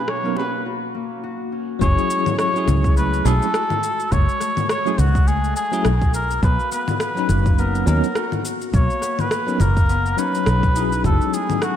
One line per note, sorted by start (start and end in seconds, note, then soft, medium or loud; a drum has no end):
0.00 0.62 B2 medium
0.00 0.62 F#3 medium
0.00 0.62 C#4 medium
0.00 1.52 C#4 medium
0.00 0.62 D#4 medium
0.00 1.34 D#4 medium
0.00 0.65 F#4 medium
0.00 0.10 B4 medium
0.00 0.62 A#5 medium
0.08 0.94 A#3 medium
0.08 0.37 C#5 medium
0.08 cross-stick medium
0.24 0.33 F#3 medium
0.24 0.34 B3 medium
0.24 0.34 C#4 medium
0.24 0.34 D#4 medium
0.24 0.34 A#4 medium
0.36 0.64 B4 medium
0.36 high bongo medium
0.66 1.23 F#4 medium
0.95 2.16 A#3 medium
1.23 3.54 F#4 medium
1.52 4.42 C#4 medium
1.79 1.95 F#1 loud
1.79 2.48 F#3 medium
1.79 2.66 G#3 medium
1.79 2.49 C#4 medium
1.79 2.49 E4 medium
1.79 2.35 C#5 loud
1.79 kick loud
1.79 shaker soft
1.83 2.50 G#4 loud
1.98 shaker soft
2.10 2.74 A3 medium
2.10 shaker medium
2.26 low conga medium
2.26 shaker soft
2.39 2.93 C#5 loud
2.39 cross-stick loud
2.39 shaker soft
2.53 3.21 F#3 medium
2.53 3.22 C#4 medium
2.53 3.23 E4 medium
2.53 shaker soft
2.58 3.24 G#4 loud
2.68 3.22 C#2 medium
2.68 4.11 G#3 medium
2.68 low conga medium
2.68 shaker medium
2.84 kick loud
2.84 shaker soft
2.97 4.18 A3 loud
2.97 3.27 B4 loud
2.97 shaker soft
3.14 shaker soft
3.25 3.39 B1 loud
3.25 3.44 F#3 loud
3.25 3.44 A3 medium
3.25 3.44 C#4 medium
3.25 3.45 E4 medium
3.25 3.45 G#4 loud
3.25 4.13 A4 loud
3.25 shaker medium
3.42 shaker soft
3.54 5.84 F#4 medium
3.54 cross-stick loud
3.54 shaker soft
3.70 low conga medium
3.70 shaker soft
3.83 shaker medium
4.00 shaker soft
4.12 4.26 F#1 loud
4.12 4.97 G#3 medium
4.12 4.69 C#5 loud
4.12 kick loud
4.12 shaker soft
4.29 shaker soft
4.40 5.04 A3 medium
4.40 cross-stick soft
4.40 shaker medium
4.57 low conga medium
4.57 shaker soft
4.69 5.00 C#5 loud
4.69 cross-stick loud
4.69 shaker soft
4.85 4.95 F#3 medium
4.85 4.95 A3 medium
4.85 4.95 C#4 medium
4.85 4.96 E4 medium
4.85 4.96 G#4 loud
4.85 shaker soft
4.98 5.53 C#2 medium
4.98 6.19 G#3 medium
4.98 5.29 F#4 medium
4.98 low conga medium
4.98 shaker medium
5.15 kick loud
5.15 shaker soft
5.27 6.48 A3 loud
5.27 5.56 G#4 loud
5.27 shaker soft
5.44 shaker soft
5.56 6.10 G#4 loud
5.56 shaker medium
5.71 5.88 F#3 medium
5.71 5.88 A3 medium
5.71 5.88 C#4 medium
5.71 5.88 E4 medium
5.71 5.89 G#4 loud
5.71 shaker soft
5.85 6.39 B1 medium
5.85 8.16 F#4 medium
5.85 cross-stick loud
5.85 shaker soft
6.02 kick loud
6.02 shaker soft
6.14 6.41 A#4 loud
6.14 shaker medium
6.31 shaker soft
6.42 6.56 B1 loud
6.42 6.77 A#3 medium
6.42 6.70 B4 loud
6.42 kick loud
6.42 shaker soft
6.60 shaker soft
6.71 7.35 B3 medium
6.71 6.99 B4 loud
6.71 shaker medium
6.88 low conga medium
6.88 shaker soft
7.00 7.61 B4 medium
7.00 cross-stick loud
7.00 shaker soft
7.15 7.83 F#3 medium
7.15 7.84 C#4 medium
7.15 7.84 D#4 medium
7.15 shaker soft
7.19 7.85 B4 loud
7.29 7.83 F#1 medium
7.29 7.64 A#3 medium
7.29 low conga medium
7.29 shaker medium
7.46 kick loud
7.46 shaker soft
7.58 8.80 B3 loud
7.58 7.87 A#4 loud
7.58 shaker soft
7.75 shaker soft
7.86 8.01 D#2 loud
7.86 8.05 F#3 loud
7.86 8.06 B3 medium
7.86 8.06 C#4 medium
7.86 8.06 D#4 medium
7.86 8.06 A#4 loud
7.86 8.43 A#4 medium
7.86 shaker medium
8.04 shaker soft
8.15 10.60 F#4 medium
8.15 cross-stick loud
8.15 shaker soft
8.32 low conga medium
8.32 shaker soft
8.45 shaker medium
8.61 shaker soft
8.74 8.87 B1 loud
8.74 9.08 A#3 medium
8.74 9.21 C#5 medium
8.74 kick loud
8.74 shaker soft
8.90 shaker soft
9.02 9.66 B3 medium
9.02 cross-stick soft
9.02 shaker medium
9.19 9.62 B4 loud
9.19 low conga medium
9.19 shaker soft
9.31 cross-stick loud
9.31 shaker soft
9.47 9.56 F#3 medium
9.47 9.57 B3 medium
9.47 9.57 C#4 medium
9.47 9.57 D#4 medium
9.47 9.57 A#4 medium
9.47 shaker soft
9.60 10.14 F#1 medium
9.60 9.95 A#3 medium
9.60 10.20 A#4 loud
9.60 low conga medium
9.60 shaker medium
9.77 kick loud
9.77 shaker soft
9.89 11.76 B3 loud
9.89 shaker soft
10.06 shaker soft
10.17 10.72 F#3 medium
10.17 10.72 C#4 medium
10.17 11.76 C#4 medium
10.17 10.73 D#4 medium
10.17 11.05 B4 loud
10.17 10.73 C#5 medium
10.17 shaker medium
10.35 shaker soft
10.46 11.01 B1 medium
10.46 cross-stick loud
10.46 shaker soft
10.63 kick loud
10.63 shaker soft
10.73 11.73 F#3 medium
10.73 11.74 C#4 medium
10.73 11.76 D#4 loud
10.73 11.75 E4 medium
10.73 shaker medium
10.77 11.75 G#4 loud
10.92 shaker soft
11.04 11.18 F#1 loud
11.04 11.76 G#3 medium
11.04 11.35 A4 loud
11.04 kick loud
11.04 shaker soft
11.21 shaker soft
11.33 11.76 A3 medium
11.33 11.64 G#4 loud
11.33 shaker medium
11.50 low conga medium
11.50 shaker soft
11.62 11.76 F#4 medium
11.62 cross-stick loud
11.62 shaker soft